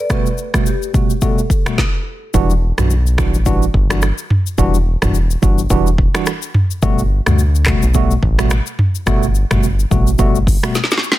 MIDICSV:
0, 0, Header, 1, 5, 480
1, 0, Start_track
1, 0, Key_signature, 1, "minor"
1, 0, Tempo, 560748
1, 85, Time_signature, 4, 2, 24, 8
1, 9575, End_track
2, 0, Start_track
2, 0, Title_t, "Marimba"
2, 0, Program_c, 0, 12
2, 0, Note_on_c, 0, 74, 88
2, 94, Note_off_c, 0, 74, 0
2, 97, Note_on_c, 0, 71, 84
2, 573, Note_on_c, 0, 67, 81
2, 585, Note_off_c, 0, 71, 0
2, 1057, Note_on_c, 0, 69, 79
2, 1063, Note_off_c, 0, 67, 0
2, 1736, Note_off_c, 0, 69, 0
2, 9575, End_track
3, 0, Start_track
3, 0, Title_t, "Tine electric piano"
3, 0, Program_c, 1, 4
3, 82, Note_on_c, 1, 47, 89
3, 84, Note_on_c, 1, 55, 89
3, 86, Note_on_c, 1, 57, 80
3, 87, Note_on_c, 1, 66, 101
3, 237, Note_off_c, 1, 47, 0
3, 239, Note_off_c, 1, 55, 0
3, 239, Note_off_c, 1, 57, 0
3, 240, Note_off_c, 1, 66, 0
3, 463, Note_on_c, 1, 47, 71
3, 464, Note_on_c, 1, 55, 66
3, 466, Note_on_c, 1, 57, 69
3, 467, Note_on_c, 1, 66, 77
3, 585, Note_off_c, 1, 47, 0
3, 586, Note_off_c, 1, 55, 0
3, 587, Note_off_c, 1, 57, 0
3, 587, Note_off_c, 1, 66, 0
3, 803, Note_on_c, 1, 47, 76
3, 805, Note_on_c, 1, 55, 68
3, 807, Note_on_c, 1, 57, 65
3, 808, Note_on_c, 1, 66, 81
3, 958, Note_off_c, 1, 47, 0
3, 959, Note_off_c, 1, 55, 0
3, 960, Note_off_c, 1, 57, 0
3, 961, Note_off_c, 1, 66, 0
3, 1043, Note_on_c, 1, 47, 92
3, 1044, Note_on_c, 1, 55, 82
3, 1046, Note_on_c, 1, 57, 81
3, 1047, Note_on_c, 1, 66, 97
3, 1198, Note_off_c, 1, 47, 0
3, 1199, Note_off_c, 1, 55, 0
3, 1199, Note_off_c, 1, 57, 0
3, 1200, Note_off_c, 1, 66, 0
3, 1421, Note_on_c, 1, 47, 76
3, 1424, Note_on_c, 1, 55, 66
3, 1426, Note_on_c, 1, 57, 67
3, 1427, Note_on_c, 1, 66, 86
3, 1544, Note_off_c, 1, 47, 0
3, 1546, Note_off_c, 1, 55, 0
3, 1546, Note_off_c, 1, 57, 0
3, 1547, Note_off_c, 1, 66, 0
3, 2002, Note_on_c, 1, 52, 95
3, 2002, Note_on_c, 1, 55, 89
3, 2004, Note_on_c, 1, 62, 87
3, 2006, Note_on_c, 1, 66, 102
3, 2157, Note_off_c, 1, 52, 0
3, 2158, Note_off_c, 1, 55, 0
3, 2159, Note_off_c, 1, 62, 0
3, 2160, Note_off_c, 1, 66, 0
3, 2379, Note_on_c, 1, 52, 73
3, 2381, Note_on_c, 1, 55, 69
3, 2383, Note_on_c, 1, 62, 68
3, 2385, Note_on_c, 1, 66, 78
3, 2503, Note_off_c, 1, 52, 0
3, 2504, Note_off_c, 1, 55, 0
3, 2505, Note_off_c, 1, 62, 0
3, 2506, Note_off_c, 1, 66, 0
3, 2720, Note_on_c, 1, 52, 78
3, 2722, Note_on_c, 1, 55, 67
3, 2723, Note_on_c, 1, 62, 72
3, 2724, Note_on_c, 1, 66, 82
3, 2876, Note_off_c, 1, 52, 0
3, 2877, Note_off_c, 1, 55, 0
3, 2878, Note_off_c, 1, 62, 0
3, 2879, Note_off_c, 1, 66, 0
3, 2959, Note_on_c, 1, 52, 90
3, 2960, Note_on_c, 1, 55, 82
3, 2963, Note_on_c, 1, 62, 80
3, 2964, Note_on_c, 1, 66, 103
3, 3116, Note_off_c, 1, 52, 0
3, 3117, Note_off_c, 1, 55, 0
3, 3118, Note_off_c, 1, 62, 0
3, 3118, Note_off_c, 1, 66, 0
3, 3338, Note_on_c, 1, 52, 76
3, 3339, Note_on_c, 1, 55, 69
3, 3341, Note_on_c, 1, 62, 68
3, 3343, Note_on_c, 1, 66, 84
3, 3462, Note_off_c, 1, 52, 0
3, 3463, Note_off_c, 1, 55, 0
3, 3464, Note_off_c, 1, 62, 0
3, 3465, Note_off_c, 1, 66, 0
3, 3920, Note_on_c, 1, 52, 94
3, 3923, Note_on_c, 1, 55, 86
3, 3924, Note_on_c, 1, 62, 86
3, 3926, Note_on_c, 1, 66, 104
3, 4077, Note_off_c, 1, 52, 0
3, 4078, Note_off_c, 1, 55, 0
3, 4078, Note_off_c, 1, 62, 0
3, 4080, Note_off_c, 1, 66, 0
3, 4299, Note_on_c, 1, 52, 78
3, 4300, Note_on_c, 1, 55, 68
3, 4301, Note_on_c, 1, 62, 71
3, 4304, Note_on_c, 1, 66, 83
3, 4423, Note_off_c, 1, 52, 0
3, 4424, Note_off_c, 1, 55, 0
3, 4424, Note_off_c, 1, 62, 0
3, 4425, Note_off_c, 1, 66, 0
3, 4639, Note_on_c, 1, 52, 78
3, 4641, Note_on_c, 1, 55, 68
3, 4642, Note_on_c, 1, 62, 71
3, 4644, Note_on_c, 1, 66, 87
3, 4796, Note_off_c, 1, 52, 0
3, 4797, Note_off_c, 1, 55, 0
3, 4798, Note_off_c, 1, 62, 0
3, 4798, Note_off_c, 1, 66, 0
3, 4881, Note_on_c, 1, 52, 95
3, 4883, Note_on_c, 1, 55, 90
3, 4885, Note_on_c, 1, 62, 85
3, 4886, Note_on_c, 1, 66, 102
3, 5037, Note_off_c, 1, 52, 0
3, 5038, Note_off_c, 1, 55, 0
3, 5039, Note_off_c, 1, 62, 0
3, 5039, Note_off_c, 1, 66, 0
3, 5259, Note_on_c, 1, 52, 80
3, 5262, Note_on_c, 1, 55, 71
3, 5263, Note_on_c, 1, 62, 73
3, 5265, Note_on_c, 1, 66, 90
3, 5383, Note_off_c, 1, 52, 0
3, 5384, Note_off_c, 1, 55, 0
3, 5385, Note_off_c, 1, 62, 0
3, 5386, Note_off_c, 1, 66, 0
3, 5841, Note_on_c, 1, 47, 96
3, 5842, Note_on_c, 1, 55, 87
3, 5844, Note_on_c, 1, 57, 88
3, 5846, Note_on_c, 1, 66, 107
3, 5997, Note_off_c, 1, 47, 0
3, 5998, Note_off_c, 1, 55, 0
3, 5998, Note_off_c, 1, 57, 0
3, 5999, Note_off_c, 1, 66, 0
3, 6220, Note_on_c, 1, 47, 72
3, 6221, Note_on_c, 1, 55, 70
3, 6223, Note_on_c, 1, 57, 69
3, 6224, Note_on_c, 1, 66, 85
3, 6343, Note_off_c, 1, 47, 0
3, 6344, Note_off_c, 1, 55, 0
3, 6345, Note_off_c, 1, 57, 0
3, 6345, Note_off_c, 1, 66, 0
3, 6561, Note_on_c, 1, 47, 77
3, 6564, Note_on_c, 1, 55, 72
3, 6565, Note_on_c, 1, 57, 72
3, 6567, Note_on_c, 1, 66, 89
3, 6717, Note_off_c, 1, 47, 0
3, 6719, Note_off_c, 1, 55, 0
3, 6719, Note_off_c, 1, 57, 0
3, 6720, Note_off_c, 1, 66, 0
3, 6803, Note_on_c, 1, 47, 93
3, 6804, Note_on_c, 1, 55, 84
3, 6806, Note_on_c, 1, 57, 86
3, 6808, Note_on_c, 1, 66, 104
3, 6958, Note_off_c, 1, 47, 0
3, 6959, Note_off_c, 1, 55, 0
3, 6959, Note_off_c, 1, 57, 0
3, 6961, Note_off_c, 1, 66, 0
3, 7180, Note_on_c, 1, 47, 76
3, 7181, Note_on_c, 1, 55, 73
3, 7184, Note_on_c, 1, 57, 74
3, 7185, Note_on_c, 1, 66, 87
3, 7303, Note_off_c, 1, 47, 0
3, 7304, Note_off_c, 1, 55, 0
3, 7305, Note_off_c, 1, 57, 0
3, 7306, Note_off_c, 1, 66, 0
3, 7760, Note_on_c, 1, 47, 97
3, 7761, Note_on_c, 1, 55, 85
3, 7763, Note_on_c, 1, 57, 89
3, 7765, Note_on_c, 1, 66, 108
3, 7916, Note_off_c, 1, 47, 0
3, 7917, Note_off_c, 1, 55, 0
3, 7918, Note_off_c, 1, 57, 0
3, 7919, Note_off_c, 1, 66, 0
3, 8140, Note_on_c, 1, 47, 78
3, 8142, Note_on_c, 1, 55, 69
3, 8143, Note_on_c, 1, 57, 71
3, 8145, Note_on_c, 1, 66, 85
3, 8263, Note_off_c, 1, 47, 0
3, 8265, Note_off_c, 1, 55, 0
3, 8265, Note_off_c, 1, 57, 0
3, 8266, Note_off_c, 1, 66, 0
3, 8481, Note_on_c, 1, 47, 79
3, 8482, Note_on_c, 1, 55, 72
3, 8483, Note_on_c, 1, 57, 69
3, 8485, Note_on_c, 1, 66, 90
3, 8637, Note_off_c, 1, 47, 0
3, 8638, Note_off_c, 1, 55, 0
3, 8638, Note_off_c, 1, 57, 0
3, 8639, Note_off_c, 1, 66, 0
3, 8720, Note_on_c, 1, 47, 94
3, 8723, Note_on_c, 1, 55, 89
3, 8724, Note_on_c, 1, 57, 89
3, 8726, Note_on_c, 1, 66, 106
3, 8876, Note_off_c, 1, 47, 0
3, 8878, Note_off_c, 1, 55, 0
3, 8879, Note_off_c, 1, 57, 0
3, 8879, Note_off_c, 1, 66, 0
3, 9099, Note_on_c, 1, 47, 81
3, 9100, Note_on_c, 1, 55, 72
3, 9102, Note_on_c, 1, 57, 72
3, 9104, Note_on_c, 1, 66, 87
3, 9223, Note_off_c, 1, 47, 0
3, 9223, Note_off_c, 1, 55, 0
3, 9224, Note_off_c, 1, 57, 0
3, 9225, Note_off_c, 1, 66, 0
3, 9575, End_track
4, 0, Start_track
4, 0, Title_t, "Analog synth bass"
4, 0, Program_c, 2, 38
4, 2004, Note_on_c, 2, 28, 106
4, 2329, Note_off_c, 2, 28, 0
4, 2384, Note_on_c, 2, 35, 88
4, 2865, Note_on_c, 2, 33, 94
4, 2878, Note_off_c, 2, 35, 0
4, 3156, Note_off_c, 2, 33, 0
4, 3202, Note_on_c, 2, 31, 94
4, 3528, Note_off_c, 2, 31, 0
4, 3923, Note_on_c, 2, 28, 107
4, 4248, Note_off_c, 2, 28, 0
4, 4301, Note_on_c, 2, 28, 96
4, 4594, Note_off_c, 2, 28, 0
4, 4646, Note_on_c, 2, 31, 86
4, 4851, Note_off_c, 2, 31, 0
4, 4882, Note_on_c, 2, 28, 102
4, 5207, Note_off_c, 2, 28, 0
4, 5842, Note_on_c, 2, 31, 113
4, 6168, Note_off_c, 2, 31, 0
4, 6223, Note_on_c, 2, 38, 87
4, 6634, Note_off_c, 2, 38, 0
4, 6702, Note_on_c, 2, 35, 97
4, 6994, Note_off_c, 2, 35, 0
4, 7041, Note_on_c, 2, 33, 103
4, 7367, Note_off_c, 2, 33, 0
4, 7763, Note_on_c, 2, 31, 109
4, 8088, Note_off_c, 2, 31, 0
4, 8142, Note_on_c, 2, 31, 89
4, 8435, Note_off_c, 2, 31, 0
4, 8487, Note_on_c, 2, 33, 97
4, 8691, Note_off_c, 2, 33, 0
4, 8723, Note_on_c, 2, 31, 111
4, 9048, Note_off_c, 2, 31, 0
4, 9575, End_track
5, 0, Start_track
5, 0, Title_t, "Drums"
5, 85, Note_on_c, 9, 36, 97
5, 86, Note_on_c, 9, 37, 88
5, 86, Note_on_c, 9, 82, 61
5, 88, Note_on_c, 9, 26, 74
5, 171, Note_off_c, 9, 36, 0
5, 172, Note_off_c, 9, 37, 0
5, 172, Note_off_c, 9, 82, 0
5, 174, Note_off_c, 9, 26, 0
5, 224, Note_on_c, 9, 82, 49
5, 309, Note_off_c, 9, 82, 0
5, 325, Note_on_c, 9, 82, 48
5, 410, Note_off_c, 9, 82, 0
5, 461, Note_on_c, 9, 37, 87
5, 463, Note_on_c, 9, 26, 74
5, 464, Note_on_c, 9, 36, 84
5, 467, Note_on_c, 9, 82, 51
5, 547, Note_off_c, 9, 37, 0
5, 549, Note_off_c, 9, 26, 0
5, 549, Note_off_c, 9, 36, 0
5, 553, Note_off_c, 9, 82, 0
5, 568, Note_on_c, 9, 82, 71
5, 653, Note_off_c, 9, 82, 0
5, 706, Note_on_c, 9, 82, 47
5, 792, Note_off_c, 9, 82, 0
5, 807, Note_on_c, 9, 36, 101
5, 809, Note_on_c, 9, 82, 48
5, 893, Note_off_c, 9, 36, 0
5, 894, Note_off_c, 9, 82, 0
5, 942, Note_on_c, 9, 82, 60
5, 1028, Note_off_c, 9, 82, 0
5, 1042, Note_on_c, 9, 82, 66
5, 1044, Note_on_c, 9, 36, 80
5, 1127, Note_off_c, 9, 82, 0
5, 1130, Note_off_c, 9, 36, 0
5, 1186, Note_on_c, 9, 82, 48
5, 1272, Note_off_c, 9, 82, 0
5, 1284, Note_on_c, 9, 36, 89
5, 1292, Note_on_c, 9, 82, 58
5, 1369, Note_off_c, 9, 36, 0
5, 1377, Note_off_c, 9, 82, 0
5, 1423, Note_on_c, 9, 37, 86
5, 1425, Note_on_c, 9, 26, 69
5, 1427, Note_on_c, 9, 82, 51
5, 1508, Note_off_c, 9, 37, 0
5, 1510, Note_off_c, 9, 26, 0
5, 1513, Note_off_c, 9, 82, 0
5, 1525, Note_on_c, 9, 36, 97
5, 1525, Note_on_c, 9, 38, 85
5, 1610, Note_off_c, 9, 36, 0
5, 1610, Note_off_c, 9, 38, 0
5, 2004, Note_on_c, 9, 82, 61
5, 2005, Note_on_c, 9, 36, 106
5, 2090, Note_off_c, 9, 36, 0
5, 2090, Note_off_c, 9, 82, 0
5, 2141, Note_on_c, 9, 82, 49
5, 2226, Note_off_c, 9, 82, 0
5, 2379, Note_on_c, 9, 37, 92
5, 2381, Note_on_c, 9, 26, 74
5, 2384, Note_on_c, 9, 45, 94
5, 2385, Note_on_c, 9, 82, 51
5, 2465, Note_off_c, 9, 37, 0
5, 2467, Note_off_c, 9, 26, 0
5, 2470, Note_off_c, 9, 45, 0
5, 2471, Note_off_c, 9, 82, 0
5, 2486, Note_on_c, 9, 82, 72
5, 2572, Note_off_c, 9, 82, 0
5, 2625, Note_on_c, 9, 82, 48
5, 2710, Note_off_c, 9, 82, 0
5, 2722, Note_on_c, 9, 37, 92
5, 2724, Note_on_c, 9, 26, 70
5, 2726, Note_on_c, 9, 36, 100
5, 2728, Note_on_c, 9, 82, 51
5, 2808, Note_off_c, 9, 37, 0
5, 2810, Note_off_c, 9, 26, 0
5, 2812, Note_off_c, 9, 36, 0
5, 2813, Note_off_c, 9, 82, 0
5, 2861, Note_on_c, 9, 82, 62
5, 2947, Note_off_c, 9, 82, 0
5, 2959, Note_on_c, 9, 82, 64
5, 2963, Note_on_c, 9, 36, 84
5, 3045, Note_off_c, 9, 82, 0
5, 3048, Note_off_c, 9, 36, 0
5, 3104, Note_on_c, 9, 82, 49
5, 3190, Note_off_c, 9, 82, 0
5, 3203, Note_on_c, 9, 36, 89
5, 3288, Note_off_c, 9, 36, 0
5, 3341, Note_on_c, 9, 37, 94
5, 3343, Note_on_c, 9, 26, 74
5, 3346, Note_on_c, 9, 82, 51
5, 3427, Note_off_c, 9, 37, 0
5, 3429, Note_off_c, 9, 26, 0
5, 3432, Note_off_c, 9, 82, 0
5, 3441, Note_on_c, 9, 82, 81
5, 3447, Note_on_c, 9, 37, 84
5, 3449, Note_on_c, 9, 26, 71
5, 3526, Note_off_c, 9, 82, 0
5, 3532, Note_off_c, 9, 37, 0
5, 3534, Note_off_c, 9, 26, 0
5, 3579, Note_on_c, 9, 82, 57
5, 3665, Note_off_c, 9, 82, 0
5, 3684, Note_on_c, 9, 45, 96
5, 3770, Note_off_c, 9, 45, 0
5, 3824, Note_on_c, 9, 82, 53
5, 3909, Note_off_c, 9, 82, 0
5, 3922, Note_on_c, 9, 82, 64
5, 3923, Note_on_c, 9, 36, 100
5, 4008, Note_off_c, 9, 82, 0
5, 4009, Note_off_c, 9, 36, 0
5, 4060, Note_on_c, 9, 82, 48
5, 4146, Note_off_c, 9, 82, 0
5, 4297, Note_on_c, 9, 37, 92
5, 4299, Note_on_c, 9, 26, 72
5, 4302, Note_on_c, 9, 36, 90
5, 4302, Note_on_c, 9, 45, 96
5, 4303, Note_on_c, 9, 82, 52
5, 4382, Note_off_c, 9, 37, 0
5, 4384, Note_off_c, 9, 26, 0
5, 4387, Note_off_c, 9, 36, 0
5, 4388, Note_off_c, 9, 45, 0
5, 4389, Note_off_c, 9, 82, 0
5, 4404, Note_on_c, 9, 82, 70
5, 4489, Note_off_c, 9, 82, 0
5, 4542, Note_on_c, 9, 82, 50
5, 4628, Note_off_c, 9, 82, 0
5, 4645, Note_on_c, 9, 36, 104
5, 4646, Note_on_c, 9, 82, 52
5, 4731, Note_off_c, 9, 36, 0
5, 4732, Note_off_c, 9, 82, 0
5, 4780, Note_on_c, 9, 82, 65
5, 4865, Note_off_c, 9, 82, 0
5, 4879, Note_on_c, 9, 82, 68
5, 4882, Note_on_c, 9, 36, 86
5, 4964, Note_off_c, 9, 82, 0
5, 4968, Note_off_c, 9, 36, 0
5, 5023, Note_on_c, 9, 82, 49
5, 5109, Note_off_c, 9, 82, 0
5, 5122, Note_on_c, 9, 36, 92
5, 5208, Note_off_c, 9, 36, 0
5, 5261, Note_on_c, 9, 37, 91
5, 5263, Note_on_c, 9, 26, 75
5, 5265, Note_on_c, 9, 82, 51
5, 5346, Note_off_c, 9, 37, 0
5, 5348, Note_off_c, 9, 26, 0
5, 5351, Note_off_c, 9, 82, 0
5, 5360, Note_on_c, 9, 82, 81
5, 5366, Note_on_c, 9, 37, 88
5, 5368, Note_on_c, 9, 26, 71
5, 5445, Note_off_c, 9, 82, 0
5, 5452, Note_off_c, 9, 37, 0
5, 5454, Note_off_c, 9, 26, 0
5, 5498, Note_on_c, 9, 82, 57
5, 5583, Note_off_c, 9, 82, 0
5, 5602, Note_on_c, 9, 45, 96
5, 5688, Note_off_c, 9, 45, 0
5, 5742, Note_on_c, 9, 82, 49
5, 5828, Note_off_c, 9, 82, 0
5, 5842, Note_on_c, 9, 82, 65
5, 5843, Note_on_c, 9, 36, 101
5, 5927, Note_off_c, 9, 82, 0
5, 5928, Note_off_c, 9, 36, 0
5, 5980, Note_on_c, 9, 82, 50
5, 6066, Note_off_c, 9, 82, 0
5, 6218, Note_on_c, 9, 37, 90
5, 6220, Note_on_c, 9, 26, 77
5, 6223, Note_on_c, 9, 45, 97
5, 6224, Note_on_c, 9, 82, 52
5, 6303, Note_off_c, 9, 37, 0
5, 6306, Note_off_c, 9, 26, 0
5, 6309, Note_off_c, 9, 45, 0
5, 6310, Note_off_c, 9, 82, 0
5, 6324, Note_on_c, 9, 82, 72
5, 6410, Note_off_c, 9, 82, 0
5, 6464, Note_on_c, 9, 82, 49
5, 6550, Note_off_c, 9, 82, 0
5, 6560, Note_on_c, 9, 37, 92
5, 6560, Note_on_c, 9, 39, 89
5, 6562, Note_on_c, 9, 26, 74
5, 6565, Note_on_c, 9, 36, 97
5, 6566, Note_on_c, 9, 82, 51
5, 6646, Note_off_c, 9, 37, 0
5, 6646, Note_off_c, 9, 39, 0
5, 6648, Note_off_c, 9, 26, 0
5, 6651, Note_off_c, 9, 36, 0
5, 6652, Note_off_c, 9, 82, 0
5, 6698, Note_on_c, 9, 82, 64
5, 6784, Note_off_c, 9, 82, 0
5, 6798, Note_on_c, 9, 82, 70
5, 6802, Note_on_c, 9, 36, 83
5, 6884, Note_off_c, 9, 82, 0
5, 6888, Note_off_c, 9, 36, 0
5, 6942, Note_on_c, 9, 82, 51
5, 7028, Note_off_c, 9, 82, 0
5, 7041, Note_on_c, 9, 36, 87
5, 7127, Note_off_c, 9, 36, 0
5, 7179, Note_on_c, 9, 37, 91
5, 7181, Note_on_c, 9, 26, 75
5, 7184, Note_on_c, 9, 82, 49
5, 7265, Note_off_c, 9, 37, 0
5, 7267, Note_off_c, 9, 26, 0
5, 7269, Note_off_c, 9, 82, 0
5, 7278, Note_on_c, 9, 82, 76
5, 7285, Note_on_c, 9, 37, 86
5, 7287, Note_on_c, 9, 26, 67
5, 7364, Note_off_c, 9, 82, 0
5, 7370, Note_off_c, 9, 37, 0
5, 7372, Note_off_c, 9, 26, 0
5, 7416, Note_on_c, 9, 82, 56
5, 7502, Note_off_c, 9, 82, 0
5, 7522, Note_on_c, 9, 45, 96
5, 7608, Note_off_c, 9, 45, 0
5, 7663, Note_on_c, 9, 82, 53
5, 7748, Note_off_c, 9, 82, 0
5, 7762, Note_on_c, 9, 37, 92
5, 7762, Note_on_c, 9, 82, 63
5, 7763, Note_on_c, 9, 36, 105
5, 7764, Note_on_c, 9, 26, 78
5, 7848, Note_off_c, 9, 36, 0
5, 7848, Note_off_c, 9, 37, 0
5, 7848, Note_off_c, 9, 82, 0
5, 7850, Note_off_c, 9, 26, 0
5, 7901, Note_on_c, 9, 82, 50
5, 7986, Note_off_c, 9, 82, 0
5, 8003, Note_on_c, 9, 82, 50
5, 8088, Note_off_c, 9, 82, 0
5, 8139, Note_on_c, 9, 37, 94
5, 8141, Note_on_c, 9, 26, 76
5, 8142, Note_on_c, 9, 36, 87
5, 8144, Note_on_c, 9, 45, 97
5, 8145, Note_on_c, 9, 82, 53
5, 8224, Note_off_c, 9, 37, 0
5, 8226, Note_off_c, 9, 26, 0
5, 8228, Note_off_c, 9, 36, 0
5, 8230, Note_off_c, 9, 45, 0
5, 8231, Note_off_c, 9, 82, 0
5, 8245, Note_on_c, 9, 82, 75
5, 8331, Note_off_c, 9, 82, 0
5, 8385, Note_on_c, 9, 82, 48
5, 8471, Note_off_c, 9, 82, 0
5, 8486, Note_on_c, 9, 36, 102
5, 8488, Note_on_c, 9, 82, 51
5, 8572, Note_off_c, 9, 36, 0
5, 8574, Note_off_c, 9, 82, 0
5, 8621, Note_on_c, 9, 82, 64
5, 8707, Note_off_c, 9, 82, 0
5, 8719, Note_on_c, 9, 82, 65
5, 8723, Note_on_c, 9, 36, 88
5, 8805, Note_off_c, 9, 82, 0
5, 8808, Note_off_c, 9, 36, 0
5, 8863, Note_on_c, 9, 82, 50
5, 8949, Note_off_c, 9, 82, 0
5, 8963, Note_on_c, 9, 36, 91
5, 8971, Note_on_c, 9, 46, 63
5, 8971, Note_on_c, 9, 82, 59
5, 9048, Note_off_c, 9, 36, 0
5, 9057, Note_off_c, 9, 46, 0
5, 9057, Note_off_c, 9, 82, 0
5, 9103, Note_on_c, 9, 37, 94
5, 9105, Note_on_c, 9, 26, 73
5, 9107, Note_on_c, 9, 82, 51
5, 9188, Note_off_c, 9, 37, 0
5, 9190, Note_off_c, 9, 26, 0
5, 9193, Note_off_c, 9, 82, 0
5, 9202, Note_on_c, 9, 82, 80
5, 9205, Note_on_c, 9, 38, 56
5, 9276, Note_off_c, 9, 38, 0
5, 9276, Note_on_c, 9, 38, 54
5, 9287, Note_off_c, 9, 82, 0
5, 9341, Note_on_c, 9, 82, 57
5, 9345, Note_off_c, 9, 38, 0
5, 9345, Note_on_c, 9, 38, 74
5, 9396, Note_off_c, 9, 38, 0
5, 9396, Note_on_c, 9, 38, 64
5, 9427, Note_off_c, 9, 82, 0
5, 9444, Note_on_c, 9, 82, 52
5, 9481, Note_off_c, 9, 38, 0
5, 9516, Note_on_c, 9, 38, 82
5, 9529, Note_off_c, 9, 82, 0
5, 9575, Note_off_c, 9, 38, 0
5, 9575, End_track
0, 0, End_of_file